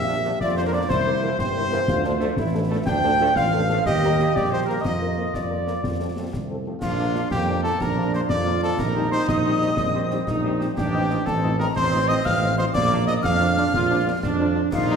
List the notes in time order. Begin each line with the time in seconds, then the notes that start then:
Already playing: A#1 G4 E5
0.07 A#3 D4 F4, snare
0.23 F3 A#3 D4 F4, snare
0.41 F2 F4 D5, concert bass drum, snare
0.57 A#3 D4 F4 C5
0.66 A#4
0.71 F3 A#3 D4 F4 D5
0.89 C2 E4 C5, concert bass drum, snare, crash
1.07 G3 E4 A#4
1.22 E3 G3 A#3 E4 A#4
1.39 G1 G4 C5, concert bass drum, snare
1.56 G3 E4 A#4
1.70 E3 G3 A#3 E4 A#4, snare
1.88 D2 F4, concert bass drum, snare
2.04 F3 D4 A4, snare
2.20 F3 A3 D4 A4, snare
2.37 A1 E4, concert bass drum, snare
2.54 F3 D4 A4
2.70 F3 A3 D4 A4
2.87 D2 D4 G5, concert bass drum, snare, crash
3.04 F3 D4 A4
3.20 F3 A3 D4 A4
3.36 A1 F4 F5, concert bass drum, snare
3.54 F3 D4 A4
3.69 F3 A3 D4 A4, snare
3.85 D#2 G4 D#5, concert bass drum, snare
4.03 G3 A#3 G4, snare
4.18 G3 A#3 G4, snare
4.36 A#1 G4 D5, concert bass drum, snare
4.51 G3 A#3 G4 C5
4.66 G3 A#3 G4 A#4
4.81 D#5, concert bass drum, snare, crash
4.85 F2 F4 D#5
5.02 F3 A#3 A#4
5.16 F3 A#3 A#4
5.34 F2 D5, concert bass drum, snare
5.51 F3 A#3 A#4
5.66 F3 A#3 A#4, snare
5.84 F2, concert bass drum, snare
6.00 F3 C4 A4
6.16 F3 A3 C4 A4
6.33 C2, concert bass drum, snare
6.49 F3 C4 A4
6.66 F3 A3 C4 A4
6.81 A#1 D4 F4 F5, concert bass drum, snare, crash
6.98 F3 A#3 D4 F4 D5
7.14 F3 A#3 D4 F4 D5, snare
7.31 F2 A#3 G4 G5, concert bass drum, snare
7.46 F3 A#3 D4 F4 D5
7.63 F3 A#3 D4 F4 A4 D5 A5, snare
7.80 A#1 D4 A#4 A#5, concert bass drum, snare
7.96 F3 A#3 D4 F4 D5
8.12 F3 A#3 D4 F4 C5 D5 C6, snare
8.29 F2 F4 D5 D6, concert bass drum, snare
8.46 F3 A#3 D4 F4 D5
8.63 F3 A#3 D4 F4 A4 D5 A5, snare
8.79 A#1 D#4 A#4 A#5, concert bass drum, snare, crash
8.95 G3 C4 D#4 G4 C5
9.11 G3 C4 D#4 G4 C5 C6, snare
9.28 A#1 D#5 D#6, concert bass drum, snare
9.45 G3 C4 D#4 G4 C5
9.61 G3 C4 D#4 G4 C5, snare
9.77 A#1 C4, concert bass drum, snare
9.94 G3 C4 D#4 G4 C5
10.11 G3 C4 D#4 G4 C5, snare
10.27 A#1 D#4, concert bass drum, snare
10.43 G3 C4 D#4 G4 C5
10.60 G3 C4 D#4 G4 C5, snare
10.77 A1 D4 G4 G5, concert bass drum, snare, crash
10.93 F3 C4 D#4 F4 D#5
11.10 F3 C4 D#4 F4 D#5, snare
11.26 A1 C4 A4 A5, concert bass drum, snare
11.42 F3 C4 D#4 F4 D#5
11.59 F3 C4 D#4 F4 A#4 D#5 A#5, snare
11.76 A1 C4 C5 C6, concert bass drum, snare
11.92 F3 C4 D#4 F4 D#5
12.08 F3 C4 D#4 F4 D#5 D#6, snare
12.24 A1 F5 F6, concert bass drum, snare
12.40 F3 C4 D#4 F4 D#5
12.57 F3 C4 D#4 F4 C5 D#5 C6, snare
12.73 A#1 A#3 D5 D6, concert bass drum, snare, crash
12.90 F3 D4 F4 D5
13.06 F3 D4 F4 D5 D#5 D#6, snare
13.22 F2 D4 F5 F6, concert bass drum, snare
13.39 F3 D4 F4 D5
13.57 F3 D4 F4 D5, snare
13.74 A#1 F4, concert bass drum, snare
13.90 F3 D4 F4 D5
14.07 F3 D4 F4 D5
14.23 F2 D4, concert bass drum, snare
14.39 F3 D4 F4 D5
14.55 F3 D4 F4 D5
14.71 A#1 D#4 F4 F5, concert bass drum, snare, crash
14.87 G3 A#3 D#4 G4 D#5